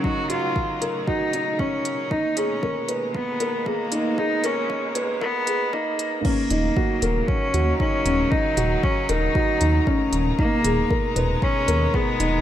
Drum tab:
CC |--------|--------|--------|x-------|
HH |-x-x-x-x|-x-x-x-x|-x-x-x-x|-x-x-x-x|
BD |o-o-o-o-|o-o-o-o-|o-o-o-o-|o-o-o-o-|

CC |--------|--------|
HH |-x-x-x-x|-x-x-x-x|
BD |o-o-o-o-|o-o-o-o-|